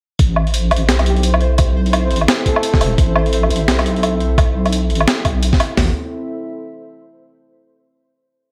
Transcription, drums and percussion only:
0.19 kick, closed hi-hat
0.36 low woodblock
0.47 open hi-hat
0.54 closed hi-hat
0.71 closed hi-hat, low woodblock
0.76 closed hi-hat
0.89 snare, closed hi-hat
0.99 open hi-hat, low woodblock
1.06 closed hi-hat
1.16 open hi-hat
1.23 closed hi-hat
1.34 low woodblock
1.41 closed hi-hat
1.58 kick, closed hi-hat, low woodblock
1.86 open hi-hat
1.93 closed hi-hat, low woodblock
2.11 closed hi-hat
2.16 closed hi-hat
2.21 low woodblock
2.28 snare, closed hi-hat
2.46 kick, closed hi-hat
2.56 low woodblock
2.63 closed hi-hat
2.74 kick, snare
2.81 open hi-hat, low woodblock
2.98 kick, closed hi-hat
3.16 low woodblock
3.26 open hi-hat
3.33 closed hi-hat
3.43 low woodblock
3.50 closed hi-hat
3.56 closed hi-hat
3.68 snare, closed hi-hat
3.79 open hi-hat, low woodblock
3.86 closed hi-hat
3.96 open hi-hat
4.03 closed hi-hat, low woodblock
4.20 closed hi-hat
4.38 kick, closed hi-hat, low woodblock
4.66 open hi-hat, low woodblock
4.73 closed hi-hat
4.90 closed hi-hat
4.95 closed hi-hat
5.01 low woodblock
5.08 snare, closed hi-hat
5.25 kick, closed hi-hat, low woodblock
5.43 closed hi-hat
5.53 kick, snare
5.60 open hi-hat, low woodblock
5.77 snare, floor tom, open hi-hat

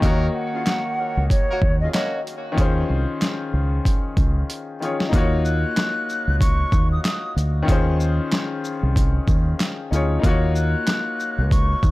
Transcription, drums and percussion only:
0.02 kick, closed hi-hat
0.66 snare, clap, closed hi-hat
1.30 kick, closed hi-hat
1.62 kick
1.94 snare, clap, closed hi-hat
2.27 closed hi-hat
2.58 kick, closed hi-hat
3.21 snare, clap, closed hi-hat
3.85 kick, closed hi-hat
4.17 kick, closed hi-hat
4.50 closed hi-hat
4.82 closed hi-hat
5.00 snare
5.13 kick, closed hi-hat
5.45 shaker
5.77 snare, clap, closed hi-hat
6.09 shaker
6.41 kick, closed hi-hat
6.72 kick, shaker
7.05 snare, clap, closed hi-hat
7.38 closed hi-hat, shaker
7.68 kick, closed hi-hat
8.00 shaker
8.32 snare, clap, closed hi-hat
8.65 shaker
8.96 kick, closed hi-hat
9.28 kick, shaker
9.60 snare, clap, closed hi-hat
9.93 closed hi-hat, shaker
10.24 kick, closed hi-hat
10.55 shaker
10.87 snare, clap, closed hi-hat
11.20 shaker
11.51 kick, closed hi-hat
11.83 kick, shaker

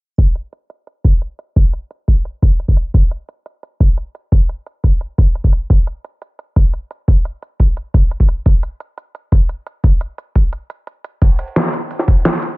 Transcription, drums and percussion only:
0.18 kick, closed hi-hat
0.35 closed hi-hat
0.53 closed hi-hat
0.70 closed hi-hat
0.87 closed hi-hat
1.04 kick, closed hi-hat
1.22 closed hi-hat
1.39 closed hi-hat
1.56 kick, closed hi-hat
1.73 closed hi-hat
1.91 closed hi-hat
2.08 kick, closed hi-hat
2.25 closed hi-hat
2.42 kick, closed hi-hat
2.60 closed hi-hat
2.68 kick
2.77 closed hi-hat
2.94 kick, closed hi-hat
3.11 closed hi-hat
3.29 closed hi-hat
3.46 closed hi-hat
3.63 closed hi-hat
3.80 kick, closed hi-hat
3.98 closed hi-hat
4.15 closed hi-hat
4.32 kick, closed hi-hat
4.49 closed hi-hat
4.67 closed hi-hat
4.84 kick, closed hi-hat
5.01 closed hi-hat
5.18 kick, closed hi-hat
5.35 closed hi-hat
5.44 kick
5.53 closed hi-hat
5.70 kick, closed hi-hat
5.87 closed hi-hat
6.05 closed hi-hat
6.22 closed hi-hat
6.39 closed hi-hat
6.56 kick, closed hi-hat
6.74 closed hi-hat
6.91 closed hi-hat
7.08 kick, closed hi-hat
7.25 closed hi-hat
7.42 closed hi-hat
7.60 kick, closed hi-hat
7.77 closed hi-hat
7.94 kick, closed hi-hat
8.11 closed hi-hat
8.20 kick
8.29 closed hi-hat
8.46 kick, closed hi-hat
8.63 closed hi-hat
8.80 closed hi-hat
8.98 closed hi-hat
9.15 closed hi-hat
9.32 kick, closed hi-hat
9.49 closed hi-hat
9.67 closed hi-hat
9.84 kick, closed hi-hat
10.01 closed hi-hat
10.18 closed hi-hat
10.35 kick, closed hi-hat
10.53 closed hi-hat
10.70 closed hi-hat
10.87 closed hi-hat
11.04 closed hi-hat
11.22 kick, closed hi-hat, ride
11.39 closed hi-hat, ride
11.48 ride
11.56 snare, closed hi-hat, ride
11.65 snare
11.73 closed hi-hat, ride
11.91 closed hi-hat, ride
11.99 snare
12.08 kick, closed hi-hat, ride
12.25 snare, closed hi-hat, ride
12.42 closed hi-hat, ride

